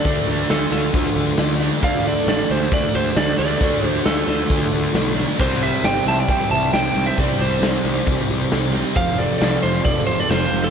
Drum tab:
CC |--------|--------|--------|x-------|
HH |o-o-o-o-|o-o-o-o-|o-o-o-o-|--o-o-o-|
SD |--oo--oo|--o---o-|--oo--oo|--oo--o-|
BD |o---o---|o---o---|o---o---|o---o---|

CC |--------|--------|
HH |o-o-o-o-|o-o-o-o-|
SD |--o---o-|--oo--o-|
BD |o---o---|o---o---|